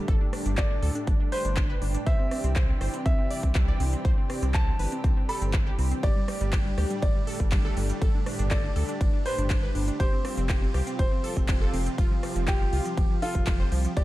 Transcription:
Already playing: A2 D3 G3 D4 G4
0.08 G1 A4, kick, closed hi-hat
0.21 D4
0.33 D4, cross-stick, open hi-hat
0.46 G1 D4, closed hi-hat
0.57 A4 D5, kick, clap, closed hi-hat
0.71 D4
0.83 D2 A4, open hi-hat
0.95 D4, closed hi-hat
1.07 G1 D4, kick, closed hi-hat
1.20 D4
1.32 B4 C5, open hi-hat
1.45 G1 D4, closed hi-hat
1.57 D4, kick, clap, closed hi-hat
1.70 B4
1.82 G1 D4, open hi-hat
1.95 D4, closed hi-hat
2.06 C2 C3 E3 G3 C5 E5, kick, closed hi-hat
2.19 C4
2.31 C4, cross-stick, open hi-hat
2.44 C2 C4, closed hi-hat
2.56 C5, kick, clap, closed hi-hat
2.69 C4
2.81 G1 C5, cross-stick, open hi-hat
2.94 C4, closed hi-hat
3.06 C2 C4 E5, kick, closed hi-hat
3.19 C4
3.31 D5, open hi-hat
3.43 C2 C4, kick, closed hi-hat
3.55 C4, kick, clap, closed hi-hat
3.68 D5
3.80 C2 C4, open hi-hat
3.93 C4, closed hi-hat
4.05 C2 C5, kick, closed hi-hat
4.18 C4
4.30 C4, cross-stick, open hi-hat
4.42 C2 C4, closed hi-hat
4.54 C5 A5, kick, clap, closed hi-hat
4.67 C4
4.79 G1 B4, open hi-hat
4.92 C4, closed hi-hat
5.04 C2 C4, kick, closed hi-hat
5.17 C4
5.29 A4 B5, open hi-hat
5.42 G1 C4, closed hi-hat
5.54 C4, kick, clap, closed hi-hat
5.67 G4
5.78 C2 C4, open hi-hat
5.91 C4, closed hi-hat
6.03 G1 A2 D3 D4 G4 D5, kick, closed hi-hat, ride
6.16 G3
6.28 G3, cross-stick, open hi-hat
6.41 G1 G3, closed hi-hat
6.53 G4, kick, clap, closed hi-hat, ride
6.66 G3
6.78 D2 G4, cross-stick, open hi-hat
6.90 G3, closed hi-hat
7.02 G1 G3 D5, kick, closed hi-hat, ride
7.15 G3
7.27 A4, open hi-hat
7.40 G1 G3, kick, closed hi-hat
7.52 G3, kick, clap, closed hi-hat, ride
7.65 A4
7.77 G1 G3, open hi-hat
7.90 G3, closed hi-hat
8.02 G1 A4, kick, closed hi-hat, ride
8.14 D4
8.26 D4, cross-stick, open hi-hat
8.39 G1 D4, closed hi-hat
8.51 A4 D5, kick, clap, closed hi-hat, ride
8.64 D4
8.76 D2 A4, open hi-hat
8.89 D4, closed hi-hat
9.01 G1 D4, kick, closed hi-hat, ride
9.14 D4
9.26 B4 C5, open hi-hat
9.38 G1 D4, closed hi-hat
9.50 D4, kick, clap, closed hi-hat, ride
9.63 B4
9.75 G1 D4, open hi-hat
9.88 D4, closed hi-hat
10.00 F1 C3 F3 F4 G4 C5, kick, closed hi-hat, ride
10.13 C4
10.25 C4, cross-stick, open hi-hat
10.38 F1 C4, closed hi-hat
10.49 G4, kick, clap, closed hi-hat, ride
10.62 C4
10.74 C2 G4, cross-stick, open hi-hat
10.87 C4, closed hi-hat
10.99 F1 C4 C5, kick, closed hi-hat, ride
11.12 C4
11.24 A4, open hi-hat
11.37 F1 C4, kick, closed hi-hat
11.49 C4, kick, clap, closed hi-hat, ride
11.61 A4
11.73 F1 C4, open hi-hat
11.86 C4, closed hi-hat
11.98 F1 F4, kick, closed hi-hat, ride
12.11 F3
12.23 F3, cross-stick, open hi-hat
12.36 F1 F3, closed hi-hat
12.48 F4 G4, kick, clap, closed hi-hat, ride
12.61 F3
12.72 C2 F4, open hi-hat
12.86 F3, closed hi-hat
12.97 F1 F3, kick, closed hi-hat, ride
13.10 F3
13.22 F4 A4, open hi-hat
13.35 F1 F3, kick, closed hi-hat
13.47 F3, kick, clap, closed hi-hat, ride
13.60 C5
13.72 C2 F3, open hi-hat
13.85 F3, closed hi-hat
13.97 G1 A2 D3 G3 D4 G4 D5, kick, closed hi-hat, ride

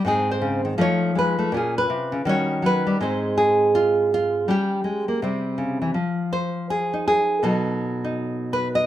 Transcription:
0.05 G#2 C4 D#4 G#4
0.31 C5
0.42 C#3
0.65 D#3
0.78 F3 A3 D#4 F4 C#5
1.15 G#3 B4
1.39 A3
1.52 A#2 C#4 F4
1.57 G#4
1.78 B4
1.90 C3
2.12 C#3
2.25 D#3 G3 C#4 F#4 C#5
2.62 F#3 B4
2.87 G3
3.00 G#2 G#3 C4 D#4 C5
3.38 G#4
3.75 F4
4.14 F4
4.48 G3 C#4 G4
4.84 G#3
5.08 A#3
5.22 C3 G3 C4
5.58 C#3
5.82 E3
5.94 F3
6.33 C5
6.70 G#4
6.93 D#4
7.08 G#4
7.43 B2 F#3 D#4 A4
8.04 D#4
8.53 B4
8.75 D#5

